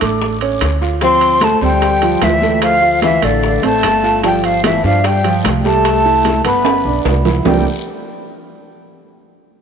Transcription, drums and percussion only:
0.01 high bongo soft
0.01 high conga soft
0.01 high timbale medium
0.01 short guiro medium
0.22 high bongo medium
0.22 high conga soft
0.22 long guiro medium
0.41 high conga soft
0.41 high timbale medium
0.61 high bongo medium
0.61 low bongo medium
0.61 high conga soft
0.61 high timbale loud
0.61 short guiro medium
0.81 high bongo soft
0.81 high conga soft
0.81 short guiro medium
1.01 high bongo medium
1.01 high conga soft
1.01 high timbale medium
1.01 long guiro medium
1.21 high conga soft
1.21 high timbale medium
1.41 high bongo medium
1.41 high conga medium
1.41 high timbale medium
1.41 short guiro medium
1.61 high bongo soft
1.61 short guiro medium
1.81 high bongo medium
1.81 high conga soft
1.81 high timbale medium
1.81 long guiro medium
2.02 high bongo soft
2.02 high conga soft
2.02 high timbale medium
2.22 high bongo medium
2.22 low bongo medium
2.22 high conga medium
2.22 high timbale loud
2.22 low timbale medium
2.22 short guiro medium
2.41 high bongo soft
2.41 high conga medium
2.41 short guiro medium
2.62 high bongo medium
2.62 high timbale loud
2.62 long guiro medium
2.82 high bongo soft
2.82 high conga soft
3.02 high bongo medium
3.02 high conga medium
3.02 high timbale medium
3.02 short guiro medium
3.22 high bongo soft
3.22 high conga soft
3.22 high timbale medium
3.22 short guiro medium
3.43 high bongo medium
3.43 high conga soft
3.43 long guiro medium
3.63 high conga soft
3.63 high timbale medium
3.83 high bongo medium
3.83 low bongo medium
3.83 high conga soft
3.83 high timbale loud
3.83 short guiro medium
4.03 high bongo soft
4.03 high conga soft
4.03 short guiro medium
4.23 high bongo medium
4.23 high conga soft
4.23 high timbale medium
4.23 long guiro medium
4.44 high conga soft
4.44 high timbale medium
4.64 high bongo medium
4.64 high conga loud
4.64 high timbale loud
4.64 short guiro medium
4.84 high bongo soft
4.84 short guiro medium
5.04 high bongo medium
5.04 high conga soft
5.04 high timbale medium
5.04 long guiro medium
5.24 high bongo soft
5.24 high conga soft
5.24 high timbale medium
5.44 high bongo medium
5.44 low bongo medium
5.44 high conga medium
5.44 high timbale loud
5.44 short guiro medium
5.64 high bongo soft
5.64 high conga medium
5.64 short guiro medium
5.85 high bongo medium
5.85 high conga soft
5.85 high timbale medium
5.85 long guiro medium
6.05 high bongo soft
6.05 high conga soft
6.25 high bongo medium
6.25 high conga medium
6.25 high timbale medium
6.25 short guiro medium
6.45 high bongo soft
6.45 high conga soft
6.45 high timbale medium
6.45 short guiro medium
6.65 high bongo medium
6.65 high conga soft
6.65 high timbale loud
6.65 long guiro medium
6.84 high conga soft
7.05 high bongo medium
7.05 low bongo medium
7.05 high conga medium
7.05 low timbale medium
7.05 short guiro medium
7.25 high bongo soft
7.25 low conga medium
7.25 low timbale medium
7.25 short guiro medium
7.45 low bongo loud
7.45 low conga medium
7.45 low timbale medium
7.45 long guiro loud

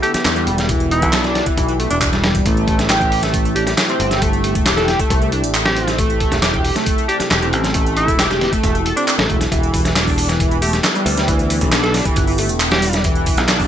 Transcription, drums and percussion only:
0.03 closed hi-hat medium
0.14 snare soft
0.14 closed hi-hat medium
0.25 snare loud
0.25 clap loud
0.25 closed hi-hat medium
0.36 closed hi-hat soft
0.47 closed hi-hat medium
0.58 snare soft
0.58 closed hi-hat medium
0.69 kick loud
0.69 closed hi-hat medium
0.80 closed hi-hat soft
0.91 closed hi-hat medium
1.02 kick medium
1.02 closed hi-hat medium
1.13 snare loud
1.13 clap loud
1.13 closed hi-hat medium
1.24 snare soft
1.24 closed hi-hat soft
1.35 snare medium
1.35 closed hi-hat medium
1.46 kick loud
1.46 closed hi-hat medium
1.57 kick loud
1.57 closed hi-hat medium
1.69 closed hi-hat soft
1.80 closed hi-hat medium
1.91 closed hi-hat medium
2.02 kick medium
2.02 clap loud
2.02 closed hi-hat medium
2.13 snare soft
2.13 closed hi-hat soft
2.24 snare loud
2.24 closed hi-hat medium
2.35 kick medium
2.35 closed hi-hat medium
2.46 kick loud
2.46 closed hi-hat medium
2.46 closed hi-hat soft
2.57 closed hi-hat soft
2.68 kick medium
2.68 closed hi-hat medium
2.79 snare medium
2.79 closed hi-hat medium
2.90 snare loud
2.90 clap loud
2.90 closed hi-hat medium
3.01 kick loud
3.01 closed hi-hat soft
3.12 open hi-hat medium
3.23 snare soft
3.23 closed hi-hat medium
3.34 kick loud
3.34 closed hi-hat medium
3.45 closed hi-hat soft
3.56 closed hi-hat medium
3.67 snare soft
3.67 closed hi-hat medium
3.78 snare loud
3.78 clap loud
3.78 closed hi-hat medium
3.78 closed hi-hat soft
3.89 closed hi-hat soft
4.00 closed hi-hat medium
4.11 snare soft
4.11 closed hi-hat medium
4.22 kick loud
4.22 closed hi-hat medium
4.22 closed hi-hat soft
4.33 closed hi-hat soft
4.44 closed hi-hat medium
4.55 kick medium
4.55 closed hi-hat medium
4.66 snare loud
4.66 clap loud
4.66 closed hi-hat medium
4.77 snare soft
4.77 closed hi-hat soft
4.88 snare medium
4.88 closed hi-hat medium
4.99 kick loud
4.99 closed hi-hat medium
5.10 kick loud
5.10 closed hi-hat medium
5.22 closed hi-hat soft
5.32 closed hi-hat medium
5.44 closed hi-hat medium
5.54 clap loud
5.54 closed hi-hat medium
5.54 closed hi-hat soft
5.66 snare loud
5.66 closed hi-hat soft
5.76 closed hi-hat medium
5.87 snare soft
5.87 closed hi-hat medium
5.99 kick loud
5.99 closed hi-hat medium
6.10 closed hi-hat soft
6.20 kick loud
6.20 closed hi-hat medium
6.32 snare medium
6.32 closed hi-hat medium
6.42 snare loud
6.42 clap loud
6.42 closed hi-hat medium
6.54 kick loud
6.54 closed hi-hat soft
6.64 open hi-hat medium
6.76 snare soft
6.76 closed hi-hat medium
6.86 kick loud
6.86 closed hi-hat medium
6.98 closed hi-hat soft
7.09 closed hi-hat medium
7.20 snare soft
7.20 closed hi-hat medium
7.31 snare loud
7.31 clap loud
7.31 closed hi-hat medium
7.31 closed hi-hat soft
7.42 closed hi-hat soft
7.53 closed hi-hat medium
7.64 snare soft
7.64 closed hi-hat medium
7.74 kick loud
7.74 closed hi-hat medium
7.87 closed hi-hat soft
7.97 closed hi-hat medium
8.08 kick loud
8.08 closed hi-hat medium
8.19 snare loud
8.19 clap loud
8.19 closed hi-hat medium
8.31 snare soft
8.31 closed hi-hat soft
8.41 snare medium
8.41 closed hi-hat medium
8.53 kick loud
8.53 closed hi-hat medium
8.63 kick loud
8.63 closed hi-hat medium
8.75 closed hi-hat soft
8.86 closed hi-hat medium
8.97 closed hi-hat medium
9.08 clap loud
9.08 closed hi-hat medium
9.19 snare loud
9.19 closed hi-hat soft
9.30 kick medium
9.30 closed hi-hat medium
9.41 snare soft
9.41 closed hi-hat medium
9.52 kick loud
9.52 closed hi-hat medium
9.63 closed hi-hat soft
9.74 kick loud
9.74 closed hi-hat medium
9.74 open hi-hat medium
9.85 snare medium
9.85 closed hi-hat medium
9.96 snare loud
9.96 clap loud
9.96 closed hi-hat medium
10.07 kick loud
10.07 open hi-hat soft
10.18 open hi-hat medium
10.29 snare soft
10.29 closed hi-hat medium
10.40 kick loud
10.40 closed hi-hat medium
10.51 closed hi-hat soft
10.62 closed hi-hat medium
10.62 open hi-hat medium
10.73 snare soft
10.73 closed hi-hat medium
10.84 snare loud
10.84 clap loud
10.84 closed hi-hat medium
10.95 closed hi-hat soft
11.06 closed hi-hat medium
11.06 open hi-hat medium
11.18 snare soft
11.18 closed hi-hat medium
11.28 kick loud
11.28 closed hi-hat medium
11.39 closed hi-hat soft
11.50 closed hi-hat medium
11.50 open hi-hat medium
11.61 kick loud
11.61 closed hi-hat medium
11.72 snare loud
11.72 clap loud
11.72 closed hi-hat medium
11.84 snare soft
11.84 closed hi-hat soft
11.94 snare medium
11.94 closed hi-hat medium
11.94 open hi-hat medium
12.05 kick loud
12.05 closed hi-hat medium
12.16 kick loud
12.16 closed hi-hat medium
12.27 open hi-hat soft
12.38 closed hi-hat medium
12.38 open hi-hat medium
12.49 closed hi-hat medium
12.60 clap loud
12.60 closed hi-hat medium
12.71 snare loud
12.71 closed hi-hat soft
12.82 closed hi-hat medium
12.82 open hi-hat medium
12.93 snare soft
12.93 closed hi-hat medium
13.04 kick loud
13.04 closed hi-hat medium
13.16 closed hi-hat soft
13.26 kick loud
13.26 closed hi-hat medium
13.26 open hi-hat medium
13.37 snare medium
13.37 closed hi-hat medium
13.49 snare loud
13.49 clap loud
13.49 closed hi-hat medium
13.60 kick loud
13.60 open hi-hat soft

